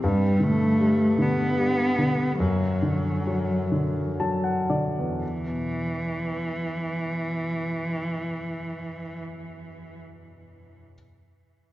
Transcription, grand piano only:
0.04 G2
0.40 D3
0.79 G3
1.18 D3
1.58 G3
1.98 D3
2.40 F#2
2.83 D3
3.27 F#3
3.72 D3
4.20 F#3 A5
4.44 F#5
4.70 D3 D5
4.98 E2
5.46 B2

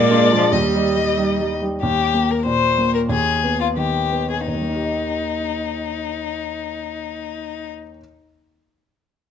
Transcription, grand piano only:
Already playing: A#2
0.10 G#3 D4 F4
0.31 G#3 D4 F4
0.52 D#2
0.74 G3 D#4 G4
0.96 G3 D#4 G4
1.17 G3 D#4 G4
1.40 G3 D#4 G4
1.61 G3 D#4 G4
1.83 D#2
2.14 A#3
2.46 A#2
2.78 A#3
3.09 D#2
3.44 B3
3.77 D#3
4.12 B3
4.48 D#2
4.54 D#3
4.62 A#3
4.69 D#4
4.75 G4
4.82 D#5

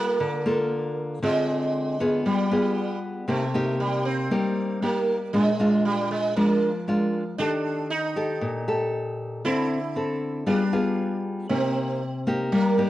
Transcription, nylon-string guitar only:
Already playing: G3 A#3 F4 A4
0.20 D3
0.46 A#3 F4 A4
1.23 D3 C4 F4 G#4
2.00 B3 F4 G#4
2.26 G3
2.51 B3 F4 G#4
3.28 C3 A#3 D#4 G4
3.54 A#3 D#4 G4
4.31 G3 A#3 D#4 G4
4.82 A#3 D#4 G4
5.33 A#2 G#3 D4 F4
5.60 G#3 D4 F4
6.37 F3 G#3 D4 F4
6.88 G#3 D4 F4
7.39 D#3 D4 G4 A4
8.16 G4 A4
8.41 A#2
8.68 G4 A4
9.44 D3 C4 A4
9.96 C4 A4
10.47 G3 B3 F4 G#4
10.73 B3 F4 G#4
11.50 C3 A#3 D#4 G4
12.27 A#3 D#4 G4
12.52 G3
12.78 A#3 D#4 G4

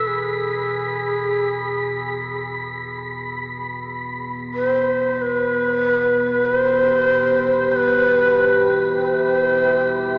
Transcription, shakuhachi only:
0.07 G#4
4.54 C5
5.18 B4 C5
6.45 B4
6.56 C5
7.72 C5
7.76 B4
8.99 C5

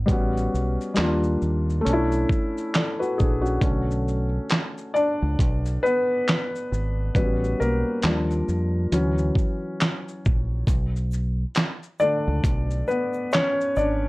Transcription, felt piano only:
0.06 G3 B3 C#4
0.12 F#4
0.94 G3 A#3
0.98 D4 F4
1.81 A3
1.85 C#4
1.89 D4 E4
2.75 A4 D5
2.99 F#4 B4
3.18 D4 G#4
3.42 C#4 F#4
3.61 D3 A3 C#4
4.94 D4 D5
5.83 B3 B4
7.16 G3 B3 C#4 F#4 B4
7.60 A#3 A#4
8.04 F3 G3 D4
8.92 E3 F#3 C#4
12.00 D3 A3 D4 D5
12.88 B3 B4
13.33 C#4 C#5
13.77 D4 D5

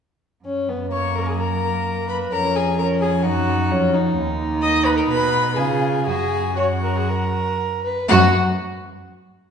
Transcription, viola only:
0.92 C#5
1.17 A#4
1.29 G#4
1.40 A#4
2.09 B4
2.32 A#4
2.56 G#4
2.79 A#4
3.02 G#4
3.24 F#4
4.63 D#5
4.85 B4
4.97 A#4
5.09 B4
5.56 G#4
6.06 G#4
6.57 F#4
8.09 F#4

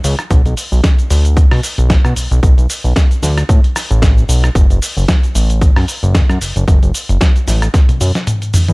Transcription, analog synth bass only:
0.04 C#2
0.31 B1
0.46 B1
0.72 B1
1.11 D2
1.52 B2
1.78 B1
2.05 B2
2.17 B1
2.31 B1
2.43 B1
2.58 B1
2.84 B1
3.23 D2
3.49 A2
3.91 A1
4.29 B1
4.55 F#1
4.70 F#1
4.97 F#1
5.35 A1
5.77 F#2
6.03 F#1
6.30 F#2
6.41 F#1
6.56 F#1
6.68 F#1
6.83 F#1
7.09 F#1
7.48 A1
8.01 F#2
8.54 E2
8.69 E2

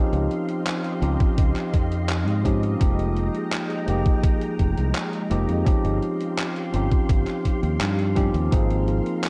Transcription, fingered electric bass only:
0.13 C#2
1.02 C#2
1.38 C#2
1.73 F2
2.27 G#2
2.81 F1
3.88 F1
4.59 F1
4.77 C2
5.31 F1
5.49 F2
5.67 muted fingered electric bass stroke
5.85 G1
6.74 G1
7.09 G1
7.63 D#2
7.81 G2
8.34 D#2
8.52 G#1

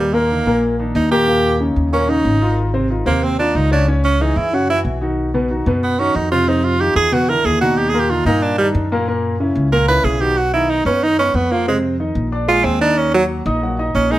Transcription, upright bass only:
Already playing: D#2
0.46 A#1
0.95 D#2
1.76 D#2
2.25 G#1
3.06 D#2
3.55 C#2
4.36 F#2
4.85 B1
5.66 F#2
6.15 F2
6.95 E2
7.45 D#2
8.25 G2
8.75 F#2
9.55 C#2
10.04 B1
10.85 F#2
11.34 F2
12.15 A#1
12.64 D#2
13.46 A#1
13.95 A#1

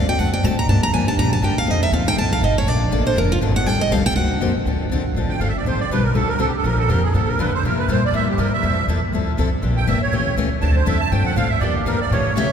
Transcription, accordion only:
5.29 G5
5.39 F5
5.48 E5
5.57 D5
5.67 C5
5.80 D5
5.91 B4
6.04 A#4
6.15 A4
6.29 A#4
6.40 A4
6.48 G4
6.57 A4
6.66 A#4
6.79 A4
6.89 A#4
7.03 G#4
7.15 A4
7.28 A#4
7.39 B4
7.54 C5
7.65 A#4
7.78 B4
7.91 C5
8.05 D5
8.15 E5
8.29 G4
8.39 A#4
8.53 E5
9.77 G5
9.87 E5
10.02 C#5
10.62 A5
10.76 C5
10.87 E5
11.00 A5
11.11 G5
11.25 F#5
11.37 F5
11.49 E5
11.60 D5
11.74 G4
11.86 A#4
12.01 D5
12.11 C#5

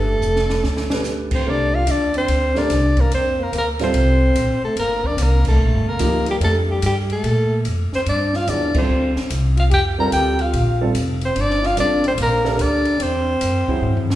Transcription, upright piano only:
0.91 A3 D4 G4 B4
1.46 A3 D4 G4 A#4
2.56 A3 D4 G4 A#4
3.80 G3 C4 F4 A4
6.00 F3 A#3 D#4 G4
6.41 D4 G4 A4 A#4
8.48 F#3 B3 E4 G#4
8.75 G3 C4 F4 A4
9.99 G3 C4 F4 A4
10.81 G3 C4 F4 A4
11.77 G3 C4 F4 A4
12.45 D4 G4 A4 A#4
13.68 F#3 C4 E4 G#4

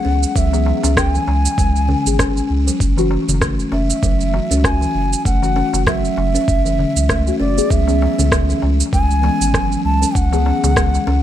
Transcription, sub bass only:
0.05 C#2
0.36 C#2
0.84 C#2
1.27 C#2
1.58 C#2
2.06 G#1
2.50 C#2
2.80 F#1
3.28 F#1
3.72 F#1
4.03 F#1
4.51 C#2
4.95 F#1
5.26 F#1
5.73 F#1
6.17 F#1
6.48 F#1
6.96 C#2
7.40 F#1
7.71 C#2
8.19 C#2
8.63 C#2
8.93 C#2
9.41 G#1
9.85 C#2
10.15 C#2
10.63 C#2
11.07 C#2

